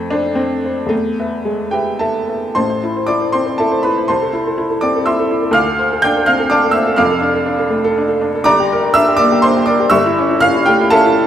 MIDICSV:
0, 0, Header, 1, 2, 480
1, 0, Start_track
1, 0, Key_signature, 0, "minor"
1, 0, Tempo, 524476
1, 839, Time_signature, 3, 2, 24, 8
1, 839, Tempo, 550459
1, 2279, Tempo, 513699
1, 3239, Tempo, 487013
1, 8999, Tempo, 500417
1, 10754, End_track
2, 0, Start_track
2, 0, Title_t, "Upright piano"
2, 0, Program_c, 0, 0
2, 0, Control_c, 0, 64, 127
2, 0, Note_on_c, 0, 41, 61
2, 0, Note_on_c, 0, 57, 83
2, 0, Note_on_c, 0, 69, 44
2, 0, Note_on_c, 0, 72, 51
2, 96, Note_on_c, 0, 62, 79
2, 100, Note_off_c, 0, 57, 0
2, 111, Note_off_c, 0, 69, 0
2, 111, Note_on_c, 0, 69, 44
2, 114, Note_off_c, 0, 72, 0
2, 114, Note_on_c, 0, 72, 45
2, 323, Note_on_c, 0, 60, 66
2, 343, Note_off_c, 0, 62, 0
2, 553, Note_off_c, 0, 69, 0
2, 555, Note_off_c, 0, 72, 0
2, 589, Note_on_c, 0, 69, 36
2, 593, Note_on_c, 0, 72, 38
2, 789, Note_on_c, 0, 40, 52
2, 813, Note_off_c, 0, 69, 0
2, 813, Note_on_c, 0, 57, 79
2, 815, Note_off_c, 0, 72, 0
2, 824, Note_off_c, 0, 60, 0
2, 855, Control_c, 0, 64, 0
2, 859, Note_off_c, 0, 41, 0
2, 1001, Control_c, 0, 64, 127
2, 1049, Note_off_c, 0, 40, 0
2, 1080, Note_on_c, 0, 76, 43
2, 1084, Note_on_c, 0, 71, 40
2, 1305, Note_on_c, 0, 56, 61
2, 1311, Note_off_c, 0, 57, 0
2, 1531, Note_off_c, 0, 76, 0
2, 1532, Note_on_c, 0, 79, 66
2, 1533, Note_off_c, 0, 71, 0
2, 1544, Note_on_c, 0, 67, 50
2, 1547, Note_on_c, 0, 71, 36
2, 1557, Note_on_c, 0, 76, 44
2, 1776, Note_off_c, 0, 76, 0
2, 1777, Note_off_c, 0, 67, 0
2, 1778, Note_on_c, 0, 81, 65
2, 1788, Note_off_c, 0, 79, 0
2, 1788, Note_on_c, 0, 69, 48
2, 1789, Note_on_c, 0, 76, 52
2, 2001, Note_off_c, 0, 71, 0
2, 2025, Note_off_c, 0, 76, 0
2, 2030, Note_on_c, 0, 71, 27
2, 2036, Note_off_c, 0, 56, 0
2, 2038, Note_on_c, 0, 76, 33
2, 2237, Note_off_c, 0, 69, 0
2, 2247, Note_off_c, 0, 71, 0
2, 2252, Note_off_c, 0, 76, 0
2, 2257, Note_off_c, 0, 81, 0
2, 2262, Note_on_c, 0, 84, 82
2, 2268, Note_on_c, 0, 33, 49
2, 2270, Note_on_c, 0, 72, 59
2, 2270, Note_on_c, 0, 81, 58
2, 2280, Note_on_c, 0, 45, 48
2, 2297, Control_c, 0, 64, 0
2, 2385, Note_off_c, 0, 72, 0
2, 2399, Note_on_c, 0, 72, 45
2, 2480, Control_c, 0, 64, 127
2, 2529, Note_on_c, 0, 64, 41
2, 2593, Note_off_c, 0, 72, 0
2, 2650, Note_on_c, 0, 72, 41
2, 2719, Note_off_c, 0, 64, 0
2, 2724, Note_off_c, 0, 81, 0
2, 2743, Note_on_c, 0, 86, 84
2, 2754, Note_off_c, 0, 84, 0
2, 2754, Note_on_c, 0, 74, 65
2, 2762, Note_on_c, 0, 64, 46
2, 2840, Note_off_c, 0, 72, 0
2, 2884, Note_on_c, 0, 72, 37
2, 2955, Note_off_c, 0, 64, 0
2, 2981, Note_off_c, 0, 72, 0
2, 2982, Note_off_c, 0, 74, 0
2, 2986, Note_on_c, 0, 84, 81
2, 2994, Note_off_c, 0, 86, 0
2, 2995, Note_on_c, 0, 72, 60
2, 3008, Note_on_c, 0, 60, 42
2, 3101, Note_off_c, 0, 72, 0
2, 3115, Note_on_c, 0, 72, 44
2, 3194, Note_off_c, 0, 60, 0
2, 3224, Note_on_c, 0, 81, 74
2, 3229, Note_off_c, 0, 84, 0
2, 3237, Note_on_c, 0, 76, 56
2, 3239, Note_on_c, 0, 69, 58
2, 3243, Note_on_c, 0, 64, 40
2, 3307, Note_off_c, 0, 72, 0
2, 3356, Note_on_c, 0, 72, 43
2, 3436, Note_off_c, 0, 64, 0
2, 3465, Note_off_c, 0, 76, 0
2, 3466, Note_off_c, 0, 69, 0
2, 3469, Note_on_c, 0, 83, 73
2, 3475, Note_off_c, 0, 81, 0
2, 3482, Note_on_c, 0, 71, 54
2, 3490, Note_on_c, 0, 64, 39
2, 3554, Note_off_c, 0, 72, 0
2, 3612, Note_on_c, 0, 72, 43
2, 3682, Note_off_c, 0, 33, 0
2, 3683, Note_off_c, 0, 64, 0
2, 3689, Note_off_c, 0, 45, 0
2, 3710, Note_off_c, 0, 71, 0
2, 3716, Note_on_c, 0, 84, 75
2, 3720, Note_off_c, 0, 72, 0
2, 3721, Note_off_c, 0, 83, 0
2, 3725, Note_on_c, 0, 81, 63
2, 3733, Note_on_c, 0, 36, 52
2, 3735, Note_on_c, 0, 72, 63
2, 3744, Control_c, 0, 64, 0
2, 3853, Note_on_c, 0, 69, 51
2, 3918, Control_c, 0, 64, 127
2, 3964, Note_on_c, 0, 64, 47
2, 4044, Note_off_c, 0, 69, 0
2, 4099, Note_on_c, 0, 69, 46
2, 4160, Note_off_c, 0, 64, 0
2, 4206, Note_on_c, 0, 64, 50
2, 4287, Note_off_c, 0, 69, 0
2, 4333, Note_on_c, 0, 69, 48
2, 4402, Note_off_c, 0, 64, 0
2, 4412, Note_off_c, 0, 81, 0
2, 4416, Note_off_c, 0, 72, 0
2, 4437, Note_on_c, 0, 86, 88
2, 4447, Note_off_c, 0, 84, 0
2, 4447, Note_on_c, 0, 74, 66
2, 4457, Note_on_c, 0, 60, 46
2, 4526, Note_off_c, 0, 69, 0
2, 4585, Note_on_c, 0, 69, 50
2, 4648, Note_off_c, 0, 60, 0
2, 4674, Note_off_c, 0, 74, 0
2, 4678, Note_on_c, 0, 88, 75
2, 4682, Note_on_c, 0, 76, 61
2, 4686, Note_off_c, 0, 86, 0
2, 4687, Note_on_c, 0, 84, 59
2, 4694, Note_on_c, 0, 64, 45
2, 4772, Note_off_c, 0, 69, 0
2, 4814, Note_on_c, 0, 69, 50
2, 4885, Note_off_c, 0, 64, 0
2, 4929, Note_on_c, 0, 64, 38
2, 5004, Note_off_c, 0, 69, 0
2, 5038, Note_on_c, 0, 69, 44
2, 5120, Note_off_c, 0, 64, 0
2, 5126, Note_on_c, 0, 38, 64
2, 5131, Note_off_c, 0, 76, 0
2, 5133, Note_off_c, 0, 36, 0
2, 5133, Note_off_c, 0, 84, 0
2, 5144, Note_on_c, 0, 89, 100
2, 5157, Note_on_c, 0, 77, 80
2, 5157, Note_on_c, 0, 86, 67
2, 5162, Note_off_c, 0, 88, 0
2, 5164, Note_off_c, 0, 69, 0
2, 5188, Control_c, 0, 64, 0
2, 5279, Note_on_c, 0, 69, 47
2, 5351, Control_c, 0, 64, 127
2, 5400, Note_on_c, 0, 72, 53
2, 5477, Note_off_c, 0, 69, 0
2, 5536, Note_on_c, 0, 69, 52
2, 5599, Note_off_c, 0, 72, 0
2, 5611, Note_off_c, 0, 86, 0
2, 5612, Note_off_c, 0, 77, 0
2, 5629, Note_on_c, 0, 91, 104
2, 5639, Note_off_c, 0, 89, 0
2, 5647, Note_on_c, 0, 79, 86
2, 5654, Note_on_c, 0, 62, 62
2, 5728, Note_off_c, 0, 69, 0
2, 5775, Note_on_c, 0, 69, 50
2, 5847, Note_off_c, 0, 62, 0
2, 5867, Note_on_c, 0, 89, 101
2, 5874, Note_off_c, 0, 79, 0
2, 5878, Note_on_c, 0, 77, 77
2, 5883, Note_off_c, 0, 91, 0
2, 5887, Note_on_c, 0, 60, 55
2, 5967, Note_off_c, 0, 69, 0
2, 5996, Note_on_c, 0, 69, 58
2, 6081, Note_off_c, 0, 60, 0
2, 6099, Note_on_c, 0, 86, 94
2, 6107, Note_off_c, 0, 77, 0
2, 6110, Note_on_c, 0, 74, 72
2, 6115, Note_on_c, 0, 81, 75
2, 6118, Note_off_c, 0, 89, 0
2, 6119, Note_on_c, 0, 62, 56
2, 6193, Note_off_c, 0, 69, 0
2, 6230, Note_on_c, 0, 69, 49
2, 6312, Note_off_c, 0, 62, 0
2, 6312, Note_on_c, 0, 88, 89
2, 6329, Note_on_c, 0, 76, 68
2, 6337, Note_off_c, 0, 74, 0
2, 6340, Note_off_c, 0, 81, 0
2, 6342, Note_on_c, 0, 72, 46
2, 6349, Note_off_c, 0, 86, 0
2, 6426, Note_off_c, 0, 69, 0
2, 6462, Note_on_c, 0, 69, 51
2, 6537, Note_off_c, 0, 38, 0
2, 6540, Note_off_c, 0, 72, 0
2, 6559, Note_on_c, 0, 89, 88
2, 6563, Note_off_c, 0, 76, 0
2, 6570, Note_on_c, 0, 86, 79
2, 6572, Note_off_c, 0, 88, 0
2, 6572, Note_on_c, 0, 77, 79
2, 6575, Note_on_c, 0, 29, 58
2, 6579, Note_on_c, 0, 41, 66
2, 6588, Note_off_c, 0, 69, 0
2, 6617, Control_c, 0, 64, 0
2, 6700, Note_on_c, 0, 69, 60
2, 6763, Control_c, 0, 64, 127
2, 6797, Note_on_c, 0, 62, 59
2, 6896, Note_off_c, 0, 69, 0
2, 6930, Note_on_c, 0, 69, 52
2, 7004, Note_off_c, 0, 62, 0
2, 7049, Note_on_c, 0, 62, 59
2, 7132, Note_off_c, 0, 69, 0
2, 7172, Note_on_c, 0, 69, 55
2, 7252, Note_off_c, 0, 62, 0
2, 7257, Note_off_c, 0, 86, 0
2, 7258, Note_off_c, 0, 77, 0
2, 7286, Note_on_c, 0, 57, 55
2, 7291, Note_off_c, 0, 89, 0
2, 7374, Note_off_c, 0, 69, 0
2, 7426, Note_on_c, 0, 69, 69
2, 7492, Note_off_c, 0, 57, 0
2, 7560, Note_on_c, 0, 62, 55
2, 7623, Note_off_c, 0, 69, 0
2, 7662, Note_on_c, 0, 69, 57
2, 7752, Note_off_c, 0, 62, 0
2, 7792, Note_on_c, 0, 62, 54
2, 7864, Note_off_c, 0, 69, 0
2, 7927, Note_on_c, 0, 69, 56
2, 7990, Note_off_c, 0, 29, 0
2, 7990, Note_off_c, 0, 62, 0
2, 7992, Note_off_c, 0, 41, 0
2, 8015, Note_on_c, 0, 86, 115
2, 8025, Note_on_c, 0, 31, 68
2, 8027, Note_on_c, 0, 82, 94
2, 8030, Note_on_c, 0, 74, 84
2, 8037, Note_on_c, 0, 43, 68
2, 8045, Note_off_c, 0, 69, 0
2, 8058, Control_c, 0, 64, 0
2, 8170, Note_on_c, 0, 67, 64
2, 8209, Control_c, 0, 64, 127
2, 8292, Note_on_c, 0, 70, 66
2, 8356, Note_off_c, 0, 67, 0
2, 8399, Note_on_c, 0, 67, 54
2, 8476, Note_off_c, 0, 70, 0
2, 8477, Note_off_c, 0, 82, 0
2, 8478, Note_off_c, 0, 74, 0
2, 8504, Note_off_c, 0, 86, 0
2, 8504, Note_on_c, 0, 88, 127
2, 8515, Note_on_c, 0, 76, 92
2, 8526, Note_on_c, 0, 62, 65
2, 8588, Note_off_c, 0, 67, 0
2, 8647, Note_on_c, 0, 67, 63
2, 8713, Note_off_c, 0, 62, 0
2, 8729, Note_on_c, 0, 86, 116
2, 8739, Note_off_c, 0, 76, 0
2, 8749, Note_on_c, 0, 74, 84
2, 8750, Note_off_c, 0, 88, 0
2, 8756, Note_on_c, 0, 58, 58
2, 8835, Note_off_c, 0, 67, 0
2, 8881, Note_on_c, 0, 67, 68
2, 8951, Note_off_c, 0, 58, 0
2, 8979, Note_off_c, 0, 74, 0
2, 8980, Note_on_c, 0, 84, 100
2, 8986, Note_off_c, 0, 86, 0
2, 8995, Note_on_c, 0, 72, 88
2, 9002, Note_on_c, 0, 62, 59
2, 9073, Note_off_c, 0, 67, 0
2, 9119, Note_on_c, 0, 67, 59
2, 9191, Note_off_c, 0, 62, 0
2, 9207, Note_on_c, 0, 86, 96
2, 9218, Note_off_c, 0, 72, 0
2, 9219, Note_on_c, 0, 74, 73
2, 9227, Note_off_c, 0, 84, 0
2, 9233, Note_on_c, 0, 70, 53
2, 9308, Note_off_c, 0, 67, 0
2, 9342, Note_on_c, 0, 67, 61
2, 9424, Note_off_c, 0, 70, 0
2, 9427, Note_off_c, 0, 31, 0
2, 9432, Note_off_c, 0, 43, 0
2, 9437, Note_on_c, 0, 88, 117
2, 9443, Note_on_c, 0, 85, 91
2, 9445, Note_on_c, 0, 76, 85
2, 9446, Note_on_c, 0, 31, 69
2, 9447, Note_off_c, 0, 74, 0
2, 9449, Note_on_c, 0, 43, 73
2, 9458, Note_off_c, 0, 86, 0
2, 9467, Note_off_c, 0, 67, 0
2, 9489, Control_c, 0, 64, 0
2, 9593, Note_on_c, 0, 64, 64
2, 9661, Control_c, 0, 64, 127
2, 9714, Note_on_c, 0, 61, 64
2, 9782, Note_off_c, 0, 64, 0
2, 9835, Note_on_c, 0, 64, 51
2, 9900, Note_off_c, 0, 85, 0
2, 9901, Note_off_c, 0, 76, 0
2, 9903, Note_off_c, 0, 61, 0
2, 9924, Note_on_c, 0, 89, 127
2, 9931, Note_off_c, 0, 88, 0
2, 9939, Note_on_c, 0, 77, 99
2, 9952, Note_on_c, 0, 61, 67
2, 10024, Note_off_c, 0, 64, 0
2, 10054, Note_on_c, 0, 64, 55
2, 10144, Note_off_c, 0, 61, 0
2, 10166, Note_on_c, 0, 79, 95
2, 10169, Note_off_c, 0, 77, 0
2, 10179, Note_off_c, 0, 89, 0
2, 10185, Note_on_c, 0, 67, 76
2, 10189, Note_on_c, 0, 57, 63
2, 10256, Note_off_c, 0, 64, 0
2, 10316, Note_on_c, 0, 64, 64
2, 10385, Note_off_c, 0, 57, 0
2, 10404, Note_on_c, 0, 81, 113
2, 10414, Note_off_c, 0, 67, 0
2, 10415, Note_on_c, 0, 69, 89
2, 10418, Note_on_c, 0, 76, 85
2, 10422, Note_off_c, 0, 79, 0
2, 10423, Note_on_c, 0, 61, 58
2, 10509, Note_off_c, 0, 64, 0
2, 10549, Note_on_c, 0, 64, 55
2, 10624, Note_off_c, 0, 61, 0
2, 10668, Note_on_c, 0, 61, 50
2, 10749, Note_off_c, 0, 64, 0
2, 10754, Note_off_c, 0, 31, 0
2, 10754, Note_off_c, 0, 43, 0
2, 10754, Note_off_c, 0, 61, 0
2, 10754, Note_off_c, 0, 69, 0
2, 10754, Note_off_c, 0, 76, 0
2, 10754, Note_off_c, 0, 81, 0
2, 10754, End_track
0, 0, End_of_file